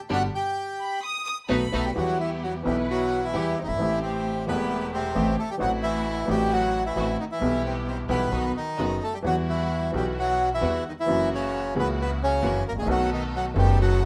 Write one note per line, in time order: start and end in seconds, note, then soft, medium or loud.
0.10 0.27 G1 loud
0.10 0.24 B2 medium
0.10 0.25 D3 medium
0.10 0.25 G3 medium
0.10 0.25 B3 medium
0.10 0.25 D4 loud
0.10 0.23 F#4 medium
0.10 0.24 G4 loud
0.10 0.23 F#5 medium
0.35 1.00 G4 medium
0.35 0.99 G5 medium
0.79 1.01 B5 medium
1.02 1.23 D#6 loud
1.24 1.35 D#6 medium
1.48 1.67 B1 medium
1.48 1.64 F#3 medium
1.48 1.64 A3 loud
1.48 1.64 B3 medium
1.48 1.64 B3 loud
1.48 1.64 D#4 medium
1.48 1.64 F#4 medium
1.48 1.92 B5 medium
1.72 1.90 B1 loud
1.72 1.87 F#3 medium
1.72 1.87 A3 medium
1.72 1.85 A3 medium
1.72 1.87 B3 medium
1.72 1.87 B3 loud
1.72 1.87 D#4 medium
1.72 1.87 F#4 loud
1.72 1.85 A4 medium
1.86 1.92 G3 medium
1.86 1.91 G4 medium
1.95 2.62 E2 medium
1.95 2.61 E3 medium
1.95 2.19 F#3 medium
1.95 2.61 G3 medium
1.95 2.62 B3 medium
1.95 2.62 E4 medium
1.95 2.18 F#4 medium
1.95 2.62 G4 medium
2.20 2.31 E3 soft
2.20 2.30 E4 medium
2.44 2.54 F#3 medium
2.44 2.54 F#4 medium
2.63 3.30 B1 medium
2.63 3.31 B1 medium
2.63 3.30 B2 medium
2.63 3.29 E3 medium
2.63 3.30 B3 medium
2.63 3.31 B3 medium
2.63 3.30 E4 medium
2.63 2.76 G4 medium
2.63 3.30 B4 medium
2.67 2.77 G3 medium
2.67 3.31 E4 medium
2.90 3.21 F#3 medium
2.90 3.24 F#4 medium
3.24 3.56 E3 medium
3.24 3.58 E4 medium
3.32 3.53 E2 medium
3.32 3.53 E3 medium
3.32 3.53 G3 medium
3.32 3.52 B3 medium
3.32 3.53 B3 medium
3.32 3.52 E4 medium
3.32 3.52 G4 medium
3.32 3.53 G4 medium
3.58 3.61 D#3 medium
3.58 3.63 C4 medium
3.58 3.60 D#4 medium
3.62 3.68 F#1 soft
3.62 3.68 F#1 medium
3.62 3.68 D#3 medium
3.62 3.68 D#4 medium
3.67 3.73 G1 medium
3.67 4.00 E3 medium
3.67 3.99 E4 medium
3.74 3.79 G#1 medium
3.78 4.45 A1 medium
3.78 4.45 A2 medium
3.78 4.44 E3 medium
3.78 4.44 A3 medium
3.78 4.44 C4 medium
3.78 4.45 C4 medium
3.78 4.44 G4 medium
3.82 4.46 G4 medium
4.02 4.45 C3 medium
4.02 4.45 C4 medium
4.47 5.12 E1 medium
4.47 5.13 E1 loud
4.47 5.13 E2 medium
4.47 5.13 C3 medium
4.47 5.12 E3 medium
4.47 5.12 A3 medium
4.47 4.90 B3 medium
4.47 5.12 E4 medium
4.47 5.12 G4 medium
4.47 4.90 B4 medium
4.51 5.14 G4 medium
4.94 5.36 C3 medium
4.94 5.35 C4 medium
5.15 5.34 A1 medium
5.15 5.35 A1 loud
5.15 5.34 A2 medium
5.15 5.34 E3 medium
5.15 5.34 A3 medium
5.15 5.34 C4 medium
5.15 5.34 G4 medium
5.15 5.35 G4 medium
5.39 5.50 A3 medium
5.39 5.50 A4 medium
5.51 5.56 G3 medium
5.51 5.55 G4 medium
5.58 6.25 A1 loud
5.58 6.25 A2 medium
5.58 6.24 E3 medium
5.58 6.24 A3 medium
5.58 6.25 A3 medium
5.58 6.25 C4 medium
5.58 6.25 E4 medium
5.58 6.25 F#4 medium
5.58 5.71 F#4 medium
5.62 5.72 F#3 medium
5.62 6.26 F#4 medium
5.83 6.26 E3 medium
5.83 6.30 E4 medium
6.26 6.92 A1 medium
6.26 6.93 A1 medium
6.26 6.92 A2 medium
6.26 6.91 E3 medium
6.26 6.92 A3 medium
6.26 6.93 C4 medium
6.26 6.92 E4 medium
6.26 6.92 F#4 medium
6.30 6.50 G3 medium
6.30 6.93 F#4 medium
6.30 6.53 G4 medium
6.53 6.84 F#3 medium
6.53 6.83 F#4 medium
6.86 7.17 E3 medium
6.86 7.17 E4 medium
6.95 7.15 A1 medium
6.95 7.15 A2 medium
6.95 7.15 E3 medium
6.95 7.15 A3 medium
6.95 7.15 C4 medium
6.95 7.15 E4 medium
6.95 7.15 F#4 medium
7.20 7.25 D#3 medium
7.20 7.25 D#4 medium
7.32 7.63 E3 medium
7.32 7.62 E4 medium
7.39 8.06 B1 medium
7.39 8.06 B2 medium
7.39 8.05 E3 medium
7.39 8.05 G3 medium
7.39 8.05 B3 medium
7.39 8.06 B3 medium
7.39 8.05 E4 medium
7.39 8.06 G4 loud
7.39 8.07 G4 medium
7.66 7.76 C3 medium
7.66 7.75 C4 medium
7.87 7.97 C3 medium
7.87 7.97 C4 medium
8.08 8.28 B1 loud
8.08 8.28 B1 medium
8.08 8.28 B2 medium
8.08 8.28 E3 medium
8.08 8.28 G3 medium
8.08 8.28 B3 medium
8.08 8.52 B3 medium
8.08 8.28 E4 medium
8.08 8.28 G4 medium
8.08 8.52 B4 medium
8.31 8.51 B1 medium
8.31 8.51 B2 medium
8.31 8.51 D#3 medium
8.31 8.51 F#3 medium
8.31 8.51 B3 medium
8.31 8.51 D#4 medium
8.31 8.51 F#4 medium
8.57 8.99 D#3 medium
8.57 9.03 D#4 medium
8.77 8.98 F#1 medium
8.77 8.98 F#2 medium
8.77 8.98 D#3 medium
8.77 8.98 F#3 medium
8.77 8.97 B3 medium
8.77 8.98 B3 medium
8.77 8.97 D#4 medium
8.77 8.97 F#4 medium
8.77 8.98 F#4 medium
9.03 9.13 A3 medium
9.03 9.14 A4 medium
9.14 9.19 G3 medium
9.14 9.19 G4 medium
9.22 9.89 E2 medium
9.22 9.90 E2 medium
9.22 9.90 E3 medium
9.22 9.36 F#3 medium
9.22 9.89 G3 medium
9.22 9.90 B3 medium
9.22 9.89 E4 medium
9.22 9.90 F#4 medium
9.22 9.36 F#4 loud
9.22 9.90 F#4 medium
9.50 9.91 E3 medium
9.50 9.91 E4 medium
9.91 10.58 B1 medium
9.91 10.58 B2 medium
9.91 10.57 E3 medium
9.91 10.58 F#3 medium
9.91 10.59 B3 medium
9.91 10.58 E4 medium
9.91 10.58 F#4 medium
9.91 10.59 F#4 medium
9.96 10.05 G3 medium
9.96 10.06 G4 medium
10.19 10.49 F#3 medium
10.19 10.49 F#4 loud
10.54 10.84 E3 medium
10.54 10.84 E4 medium
10.61 10.81 E2 medium
10.61 10.80 E3 medium
10.61 10.80 G3 medium
10.61 10.80 B3 medium
10.61 10.80 E4 medium
10.61 10.80 F#4 medium
10.88 10.93 D#3 medium
10.88 10.92 D#4 medium
11.00 11.29 E3 medium
11.00 11.29 E4 medium
11.06 11.71 F#1 medium
11.06 11.72 F#2 medium
11.06 11.71 E3 medium
11.06 11.72 F#3 medium
11.06 11.71 A#3 medium
11.06 11.72 A#3 medium
11.06 11.72 C#4 medium
11.06 11.71 E4 medium
11.06 11.71 F#4 loud
11.10 11.73 F#4 medium
11.34 11.74 C#3 medium
11.34 11.74 C#4 medium
11.74 12.39 C#2 medium
11.74 12.39 C#3 medium
11.74 12.39 E3 medium
11.74 12.38 A#3 medium
11.74 12.39 A#3 medium
11.74 12.40 C#4 medium
11.74 12.38 E4 medium
11.74 12.38 F#4 medium
11.78 11.88 B3 medium
11.78 12.41 F#4 medium
11.78 11.88 B4 medium
12.02 12.11 B3 medium
12.02 12.11 B4 medium
12.23 12.64 C#3 medium
12.23 12.64 C#4 loud
12.42 12.61 F#1 loud
12.42 12.61 F#2 medium
12.42 12.61 E3 medium
12.42 12.61 F#3 medium
12.42 12.61 A#3 medium
12.42 12.61 C#4 medium
12.42 12.61 E4 medium
12.42 12.61 F#4 medium
12.68 12.75 G#1 medium
12.68 12.76 G#1 soft
12.68 12.73 A#3 medium
12.68 12.73 A#4 medium
12.76 12.81 A1 medium
12.76 12.88 G#3 medium
12.76 12.88 G#4 medium
12.81 12.87 A#1 medium
12.81 12.86 A#1 medium
12.86 13.52 B1 loud
12.86 13.52 B1 medium
12.86 13.52 B2 loud
12.86 13.51 D#3 medium
12.86 13.52 A3 medium
12.86 13.52 B3 medium
12.86 13.53 B3 medium
12.86 13.52 D#4 medium
12.86 13.53 F#4 medium
12.86 13.52 A4 medium
12.90 13.10 F#3 medium
12.90 13.10 F#4 loud
13.13 13.23 D#3 medium
13.13 13.23 D#4 medium
13.35 13.45 F#3 medium
13.35 13.46 F#4 medium
13.54 14.05 F#1 loud
13.54 14.05 F#1 medium
13.54 14.05 F#2 medium
13.54 14.05 D#3 medium
13.54 13.78 G3 medium
13.54 14.05 A3 medium
13.54 14.05 B3 medium
13.54 14.05 D#4 medium
13.54 14.05 F#4 medium
13.54 14.05 A4 medium
13.59 13.79 G4 medium
13.80 14.01 F#3 medium
13.80 14.03 F#4 loud